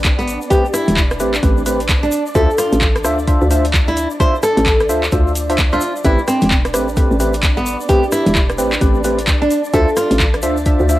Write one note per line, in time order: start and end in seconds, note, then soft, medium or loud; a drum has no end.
0.00 0.37 A1 medium
0.00 6.03 D4 medium
0.00 6.03 D5 medium
0.04 kick loud
0.04 clap loud
0.04 closed hi-hat medium
0.04 shaker medium
0.19 0.38 B3 medium
0.19 shaker soft
0.28 open hi-hat loud
0.28 shaker medium
0.42 shaker soft
0.50 0.65 A3 medium
0.50 0.65 C4 medium
0.50 0.66 G4 loud
0.50 0.65 G4 medium
0.50 0.65 B4 loud
0.50 kick loud
0.50 closed hi-hat medium
0.50 shaker medium
0.65 shaker soft
0.74 1.01 E4 medium
0.74 cross-stick medium
0.74 open hi-hat loud
0.74 shaker loud
0.88 1.21 E1 loud
0.88 closed hi-hat medium
0.88 shaker soft
0.97 kick loud
0.97 clap loud
0.97 shaker medium
1.11 cross-stick medium
1.11 closed hi-hat soft
1.11 shaker soft
1.20 1.39 A1 loud
1.20 1.34 A3 medium
1.20 1.34 C4 medium
1.20 1.34 G4 medium
1.20 1.34 B4 medium
1.20 open hi-hat loud
1.20 shaker medium
1.34 clap medium
1.34 shaker soft
1.43 2.09 A1 medium
1.43 1.63 A3 medium
1.43 1.63 C4 medium
1.43 1.63 G4 medium
1.43 1.63 B4 medium
1.43 kick loud
1.43 closed hi-hat medium
1.43 shaker soft
1.57 shaker soft
1.66 1.80 A3 medium
1.66 1.80 C4 medium
1.66 1.80 G4 medium
1.66 1.80 B4 medium
1.66 open hi-hat loud
1.66 shaker medium
1.80 closed hi-hat medium
1.80 shaker soft
1.89 kick loud
1.89 clap loud
1.89 closed hi-hat medium
1.89 shaker medium
2.03 2.22 D4 medium
2.03 shaker soft
2.12 open hi-hat loud
2.12 shaker medium
2.26 shaker soft
2.35 2.47 D2 loud
2.35 2.50 D4 loud
2.35 2.50 F4 medium
2.35 2.51 A4 loud
2.35 2.50 C5 medium
2.35 2.50 E5 loud
2.35 kick loud
2.35 closed hi-hat medium
2.35 shaker medium
2.50 shaker soft
2.58 2.86 F4 medium
2.58 cross-stick medium
2.58 open hi-hat loud
2.58 shaker loud
2.73 3.06 A1 loud
2.73 closed hi-hat medium
2.73 shaker soft
2.81 kick loud
2.81 clap loud
2.81 shaker medium
2.96 cross-stick medium
2.96 closed hi-hat soft
2.96 shaker soft
3.04 3.37 D2 medium
3.04 3.19 D4 medium
3.04 3.19 F4 medium
3.04 3.19 C5 medium
3.04 3.19 E5 medium
3.04 cross-stick medium
3.04 open hi-hat loud
3.04 shaker loud
3.19 shaker soft
3.28 3.47 D4 medium
3.28 3.47 F4 medium
3.28 3.47 C5 medium
3.28 3.47 E5 medium
3.28 kick loud
3.28 closed hi-hat medium
3.28 shaker medium
3.41 4.07 D2 loud
3.41 shaker soft
3.51 3.65 D4 medium
3.51 3.65 F4 medium
3.51 3.65 C5 medium
3.51 3.65 E5 medium
3.51 open hi-hat loud
3.51 shaker loud
3.65 closed hi-hat medium
3.65 shaker soft
3.74 kick loud
3.74 clap loud
3.74 closed hi-hat medium
3.74 shaker soft
3.88 4.07 E4 medium
3.88 shaker soft
3.97 open hi-hat loud
3.97 shaker medium
4.10 shaker soft
4.20 4.34 D4 loud
4.20 4.34 F4 medium
4.20 4.34 C5 medium
4.20 4.36 C5 loud
4.20 4.34 E5 loud
4.20 kick loud
4.20 closed hi-hat medium
4.20 shaker medium
4.35 shaker soft
4.43 4.70 A4 loud
4.43 cross-stick medium
4.43 open hi-hat loud
4.43 shaker loud
4.57 4.91 A1 loud
4.57 closed hi-hat medium
4.57 shaker soft
4.66 kick loud
4.66 clap loud
4.66 shaker medium
4.80 cross-stick medium
4.80 closed hi-hat soft
4.80 shaker soft
4.89 5.09 D2 medium
4.89 5.03 D4 medium
4.89 5.03 F4 medium
4.89 5.03 C5 medium
4.89 5.03 E5 medium
4.89 open hi-hat loud
4.89 shaker medium
5.03 clap medium
5.03 shaker soft
5.12 5.79 D2 medium
5.12 5.32 D4 medium
5.12 5.32 F4 medium
5.12 5.32 C5 medium
5.12 5.32 E5 medium
5.12 kick loud
5.12 closed hi-hat medium
5.12 shaker medium
5.27 shaker soft
5.35 open hi-hat loud
5.35 shaker loud
5.49 5.58 D4 medium
5.49 5.58 F4 medium
5.49 5.58 C5 medium
5.49 5.58 E5 medium
5.49 closed hi-hat medium
5.49 shaker soft
5.58 kick loud
5.58 clap loud
5.58 closed hi-hat medium
5.58 shaker medium
5.72 5.81 D4 loud
5.72 5.81 F4 medium
5.72 5.92 F4 medium
5.72 5.81 C5 medium
5.72 5.81 E5 loud
5.72 shaker soft
5.81 open hi-hat loud
5.81 shaker medium
5.96 shaker soft
6.04 6.16 A1 loud
6.04 6.19 A3 medium
6.04 6.19 C4 medium
6.04 10.99 D4 medium
6.04 6.20 E4 loud
6.04 6.19 G4 medium
6.04 6.19 B4 loud
6.04 10.99 D5 medium
6.04 kick loud
6.04 closed hi-hat medium
6.04 shaker medium
6.18 shaker soft
6.28 6.55 C4 medium
6.28 cross-stick medium
6.28 open hi-hat loud
6.28 shaker loud
6.42 6.75 E1 loud
6.42 closed hi-hat medium
6.42 shaker soft
6.51 kick loud
6.51 clap loud
6.51 shaker medium
6.65 cross-stick medium
6.65 closed hi-hat soft
6.65 shaker soft
6.74 7.07 A1 medium
6.74 6.88 A3 medium
6.74 6.88 C4 medium
6.74 6.88 G4 medium
6.74 6.88 B4 medium
6.74 cross-stick medium
6.74 open hi-hat loud
6.74 shaker loud
6.88 shaker soft
6.97 7.16 A3 medium
6.97 7.16 C4 medium
6.97 7.16 G4 medium
6.97 7.16 B4 medium
6.97 kick loud
6.97 closed hi-hat medium
6.97 shaker medium
7.11 7.76 A1 loud
7.11 shaker soft
7.20 7.34 A3 medium
7.20 7.34 C4 medium
7.20 7.34 G4 medium
7.20 7.34 B4 medium
7.20 open hi-hat loud
7.20 shaker medium
7.33 closed hi-hat medium
7.33 shaker soft
7.43 kick loud
7.43 clap loud
7.43 closed hi-hat medium
7.43 shaker medium
7.57 7.76 B3 medium
7.57 shaker soft
7.66 open hi-hat loud
7.66 shaker medium
7.80 shaker soft
7.89 8.03 A3 loud
7.89 8.03 C4 medium
7.89 8.05 G4 loud
7.89 8.03 G4 medium
7.89 8.03 B4 loud
7.89 kick loud
7.89 closed hi-hat medium
7.89 shaker medium
8.03 shaker soft
8.12 8.40 E4 medium
8.12 cross-stick medium
8.12 open hi-hat loud
8.12 shaker medium
8.26 8.60 E1 loud
8.26 closed hi-hat medium
8.26 shaker soft
8.35 kick loud
8.35 clap loud
8.35 shaker soft
8.50 cross-stick medium
8.50 closed hi-hat soft
8.50 shaker soft
8.58 8.78 A1 medium
8.58 8.73 A3 medium
8.58 8.73 C4 medium
8.58 8.73 G4 medium
8.58 8.73 B4 medium
8.58 open hi-hat loud
8.58 shaker medium
8.73 clap medium
8.73 shaker soft
8.81 9.48 A1 medium
8.81 9.01 A3 medium
8.81 9.01 C4 medium
8.81 9.01 G4 medium
8.81 9.01 B4 medium
8.81 kick loud
8.81 closed hi-hat medium
8.81 shaker medium
8.94 shaker soft
9.04 9.19 A3 medium
9.04 9.19 C4 medium
9.04 9.19 G4 medium
9.04 9.19 B4 medium
9.04 open hi-hat loud
9.04 shaker medium
9.19 closed hi-hat medium
9.19 shaker soft
9.28 kick loud
9.28 clap loud
9.28 closed hi-hat medium
9.28 shaker soft
9.42 9.61 D4 medium
9.42 shaker soft
9.51 open hi-hat loud
9.51 shaker medium
9.64 shaker soft
9.74 9.85 D2 loud
9.74 9.88 D4 loud
9.74 9.88 F4 medium
9.74 9.89 A4 loud
9.74 9.88 C5 medium
9.74 9.88 E5 loud
9.74 kick loud
9.74 closed hi-hat medium
9.74 shaker medium
9.88 shaker soft
9.97 10.24 F4 loud
9.97 cross-stick medium
9.97 open hi-hat loud
9.97 shaker loud
10.11 10.44 A1 loud
10.11 closed hi-hat medium
10.11 shaker soft
10.20 kick loud
10.20 clap loud
10.20 shaker medium
10.34 cross-stick medium
10.34 closed hi-hat soft
10.34 shaker soft
10.43 10.76 D2 medium
10.43 10.57 D4 medium
10.43 10.57 F4 medium
10.43 10.57 C5 medium
10.43 10.57 E5 medium
10.43 open hi-hat loud
10.43 shaker medium
10.57 shaker soft
10.66 10.86 D4 medium
10.66 10.86 F4 medium
10.66 10.86 C5 medium
10.66 10.86 E5 medium
10.66 kick loud
10.66 closed hi-hat medium
10.66 shaker soft
10.79 10.99 D2 loud
10.79 shaker soft
10.89 10.99 D4 medium
10.89 10.99 F4 medium
10.89 10.99 C5 medium
10.89 10.99 E5 medium
10.89 open hi-hat loud
10.89 shaker medium